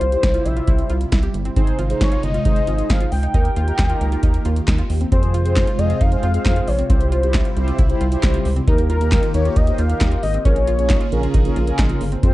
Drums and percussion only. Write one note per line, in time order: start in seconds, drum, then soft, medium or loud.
0.01 closed hi-hat medium
0.12 closed hi-hat medium
0.23 kick loud
0.23 snare loud
0.23 closed hi-hat medium
0.34 closed hi-hat medium
0.46 closed hi-hat medium
0.57 closed hi-hat medium
0.67 kick loud
0.67 closed hi-hat medium
0.78 closed hi-hat soft
0.90 closed hi-hat medium
1.01 closed hi-hat medium
1.12 kick loud
1.12 snare loud
1.12 closed hi-hat medium
1.23 closed hi-hat medium
1.34 closed hi-hat medium
1.45 closed hi-hat medium
1.56 kick loud
1.56 closed hi-hat medium
1.67 closed hi-hat medium
1.79 closed hi-hat medium
1.90 closed hi-hat medium
2.01 kick loud
2.01 snare loud
2.01 closed hi-hat medium
2.12 closed hi-hat medium
2.23 closed hi-hat medium
2.34 closed hi-hat medium
2.45 kick loud
2.45 closed hi-hat medium
2.56 closed hi-hat medium
2.67 closed hi-hat medium
2.79 closed hi-hat medium
2.90 kick loud
2.90 snare loud
2.90 closed hi-hat medium
3.01 closed hi-hat medium
3.12 open hi-hat medium
3.23 closed hi-hat medium
3.34 kick loud
3.34 closed hi-hat medium
3.45 closed hi-hat medium
3.56 closed hi-hat medium
3.68 closed hi-hat medium
3.79 kick loud
3.79 snare loud
3.79 clap loud
3.79 closed hi-hat medium
3.90 closed hi-hat medium
4.01 closed hi-hat medium
4.12 closed hi-hat medium
4.23 kick loud
4.23 closed hi-hat medium
4.34 closed hi-hat medium
4.45 closed hi-hat medium
4.56 closed hi-hat medium
4.67 kick loud
4.67 snare loud
4.67 clap medium
4.67 closed hi-hat medium
4.78 closed hi-hat medium
4.90 open hi-hat medium
5.01 closed hi-hat medium
5.12 kick loud
5.12 closed hi-hat medium
5.23 closed hi-hat medium
5.34 closed hi-hat medium
5.46 closed hi-hat medium
5.56 kick loud
5.56 snare loud
5.56 clap loud
5.56 closed hi-hat medium
5.67 closed hi-hat medium
5.79 closed hi-hat medium
5.90 closed hi-hat medium
6.01 kick loud
6.01 closed hi-hat medium
6.12 closed hi-hat medium
6.23 closed hi-hat medium
6.34 closed hi-hat medium
6.45 kick loud
6.45 snare loud
6.45 clap loud
6.45 closed hi-hat medium
6.56 closed hi-hat medium
6.68 open hi-hat medium
6.79 closed hi-hat medium
6.90 kick loud
6.90 closed hi-hat medium
7.01 closed hi-hat medium
7.12 closed hi-hat medium
7.23 closed hi-hat medium
7.34 kick loud
7.34 snare loud
7.34 clap medium
7.34 closed hi-hat medium
7.45 closed hi-hat medium
7.57 closed hi-hat medium
7.68 closed hi-hat medium
7.79 kick loud
7.79 closed hi-hat medium
7.90 closed hi-hat soft
8.01 closed hi-hat medium
8.12 closed hi-hat medium
8.23 kick loud
8.23 snare loud
8.23 clap loud
8.23 closed hi-hat medium
8.34 closed hi-hat medium
8.45 open hi-hat medium
8.56 closed hi-hat medium
8.68 kick loud
8.68 closed hi-hat medium
8.78 closed hi-hat medium
8.90 closed hi-hat medium
9.01 closed hi-hat medium
9.12 kick loud
9.12 snare loud
9.12 clap loud
9.12 closed hi-hat medium
9.23 closed hi-hat medium
9.34 closed hi-hat medium
9.45 closed hi-hat medium
9.56 kick loud
9.56 closed hi-hat medium
9.67 closed hi-hat medium
9.78 closed hi-hat medium
9.90 closed hi-hat medium
10.01 kick loud
10.01 snare loud
10.01 clap loud
10.01 closed hi-hat medium
10.12 closed hi-hat medium
10.23 open hi-hat medium
10.34 closed hi-hat medium
10.45 kick loud
10.45 closed hi-hat medium
10.56 closed hi-hat medium
10.67 closed hi-hat medium
10.79 closed hi-hat medium
10.90 kick loud
10.90 snare loud
10.90 clap loud
10.90 closed hi-hat medium
11.01 closed hi-hat medium
11.12 closed hi-hat medium
11.23 closed hi-hat medium
11.34 kick loud
11.34 closed hi-hat medium
11.45 closed hi-hat medium
11.56 closed hi-hat medium
11.67 closed hi-hat medium
11.79 kick loud
11.79 snare loud
11.79 clap loud
11.79 closed hi-hat medium
11.89 closed hi-hat medium
12.01 open hi-hat medium
12.12 closed hi-hat medium
12.23 kick loud
12.23 closed hi-hat medium